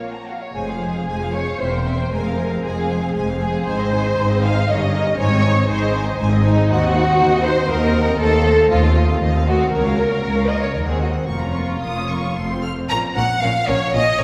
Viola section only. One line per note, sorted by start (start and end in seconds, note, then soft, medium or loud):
0.00 0.34 F3 soft
0.54 0.67 G#3 soft
0.54 0.67 C5 soft
0.67 0.81 F3 soft
0.67 0.81 G#4 soft
0.79 0.93 G#3 soft
0.79 0.94 C5 soft
0.93 1.07 F3 soft
0.93 1.07 G#4 soft
1.06 1.19 G#3 soft
1.06 1.19 C5 soft
1.19 1.33 F3 soft
1.19 1.33 G#4 soft
1.32 1.46 G#3 soft
1.32 1.46 C5 soft
1.45 1.59 F3 soft
1.45 1.59 G#4 soft
1.57 1.70 C4 soft
1.57 1.70 C5 soft
1.71 1.85 A#3 soft
1.71 1.85 A#4 soft
1.85 1.98 C4 soft
1.85 1.98 C5 soft
1.97 2.11 A#3 soft
1.97 2.11 A#4 soft
2.09 2.22 G#3 soft
2.09 2.22 C5 soft
2.24 2.37 C4 soft
2.24 2.37 G#4 soft
2.37 2.50 G#3 soft
2.37 2.50 C5 soft
2.50 2.63 C4 soft
2.50 2.63 G#4 soft
2.62 2.74 G#3 soft
2.62 2.75 C5 soft
2.75 2.88 C4 soft
2.75 2.88 G#4 soft
2.87 3.01 G#3 soft
2.87 3.01 C5 soft
3.01 3.14 C4 soft
3.01 3.14 G#4 soft
3.14 3.26 G#3 soft
3.14 3.26 C5 soft
3.27 3.41 C4 soft
3.27 3.40 G#4 soft
3.39 3.53 G#3 soft
3.39 3.53 C5 soft
3.52 3.66 C4 soft
3.52 3.66 G#4 soft
3.66 3.78 D#4 soft
3.66 3.78 C5 soft
3.78 3.91 C4 soft
3.78 3.91 G#4 soft
3.90 4.04 D#4 soft
3.90 4.04 C5 soft
4.03 4.17 C4 soft
4.03 4.17 G#4 soft
4.16 4.28 D#4 medium
4.16 4.28 C5 medium
4.28 4.42 C4 soft
4.28 4.42 G#4 medium
4.42 4.55 D#4 medium
4.42 4.55 C5 medium
4.54 4.68 C4 soft
4.54 4.67 G#4 soft
4.68 4.80 D#4 medium
4.68 4.80 A#4 medium
4.80 4.93 C#4 soft
4.80 4.93 G4 soft
4.93 5.06 D#4 soft
4.93 5.06 A#4 medium
5.05 5.18 C#4 soft
5.05 5.18 G4 medium
5.18 5.30 D#4 medium
5.18 5.30 C5 medium
5.30 5.43 C4 medium
5.30 5.43 G#4 soft
5.43 5.55 D#4 medium
5.43 5.55 C5 medium
5.55 5.68 C4 medium
5.55 5.68 G#4 medium
5.68 5.80 D#4 medium
5.68 5.80 C5 medium
5.81 5.93 C4 medium
5.81 5.93 G#4 medium
5.93 6.06 D#4 medium
5.93 6.06 C5 medium
6.05 6.18 C4 medium
6.05 6.18 G#4 medium
6.17 6.30 D#4 medium
6.17 6.30 C5 medium
6.30 6.43 C4 medium
6.30 6.43 G#4 medium
6.42 6.55 D#4 medium
6.42 6.56 C5 medium
6.55 6.68 C4 medium
6.55 6.68 G#4 medium
6.67 6.79 D#4 medium
6.67 6.80 C5 medium
6.80 6.93 C4 medium
6.80 6.93 D#5 medium
6.93 7.06 D#4 medium
6.93 7.06 C5 medium
7.05 7.18 C4 medium
7.05 7.18 D#5 medium
7.17 7.30 D#4 medium
7.17 7.30 C5 medium
7.30 7.43 C4 medium
7.30 7.43 D#5 medium
7.43 7.56 D#4 medium
7.43 7.56 C5 medium
7.56 7.69 C4 medium
7.56 7.69 D#5 medium
7.70 7.81 D#4 medium
7.70 7.81 C5 medium
7.82 7.94 C4 medium
7.82 7.94 D#5 medium
7.94 8.07 D#4 medium
7.94 8.07 C5 medium
8.07 8.19 C4 medium
8.07 8.19 D#5 medium
8.19 8.31 A3 medium
8.19 8.31 C5 medium
8.32 8.45 C4 medium
8.32 8.45 A4 medium
8.45 8.57 A3 medium
8.45 8.57 C5 medium
8.59 8.71 C4 soft
8.59 8.71 A4 soft
8.70 8.82 A3 medium
8.70 8.82 C5 medium
8.83 8.95 C4 medium
8.83 8.95 A4 medium
8.96 9.08 A3 medium
8.96 9.08 C5 medium
9.08 9.20 C4 medium
9.08 9.21 A4 medium
9.21 9.32 A3 soft
9.21 9.32 C5 medium
9.34 9.46 C4 soft
9.34 9.46 A4 soft
9.46 9.59 A3 medium
9.46 9.59 C5 medium
9.58 9.71 C4 soft
9.58 9.71 A4 soft
9.71 9.83 A#3 medium
9.71 9.83 A#4 medium
9.83 9.97 C#4 soft
9.83 9.96 C#5 soft
9.97 10.10 A#3 soft
9.97 10.10 A#4 soft
10.09 10.22 C#4 soft
10.09 10.22 C#5 soft
10.23 10.35 A#3 soft
10.23 10.35 A#4 soft
10.35 10.48 C#4 soft
10.35 10.48 C#5 soft
10.47 10.61 A#3 soft
10.47 10.61 A#4 soft
10.61 10.74 C#4 soft
10.61 10.74 C#5 soft
10.74 10.86 A#3 soft
10.74 10.87 A#4 soft
10.88 11.01 C4 soft
10.88 11.01 C5 soft
11.01 11.14 A#3 soft
11.01 11.15 A#4 soft
11.15 11.28 C4 soft
11.15 11.28 C5 soft
11.29 11.41 A#3 soft
11.29 11.41 A#4 soft
11.44 11.56 C#4 soft
11.44 11.56 C#5 soft
11.56 11.70 A#3 soft
11.56 11.70 A#4 soft
11.69 11.83 C#4 soft
11.69 11.83 C#5 soft
11.83 11.95 A#3 soft
11.83 11.95 A#4 soft
11.97 12.10 C#4 soft
11.97 12.10 C#5 soft
12.11 12.24 A#3 soft
12.11 12.24 A#4 soft
12.23 12.37 C#4 soft
12.23 12.37 C#5 soft
12.38 12.50 A3 soft
12.38 12.50 A4 soft
12.51 12.64 C4 soft
12.51 12.64 C5 soft
12.64 12.78 A3 soft
12.64 12.78 A4 soft
12.77 12.91 C4 soft
12.77 12.90 C5 soft
12.91 12.99 F3 medium
12.91 12.99 C#4 medium
13.16 13.24 F3 medium
13.16 13.24 C#4 medium
13.42 13.51 F3 medium
13.42 13.50 C#4 medium
13.70 13.78 F3 medium
13.70 13.78 C#4 medium
13.94 14.03 F3 medium
13.94 14.02 C#4 medium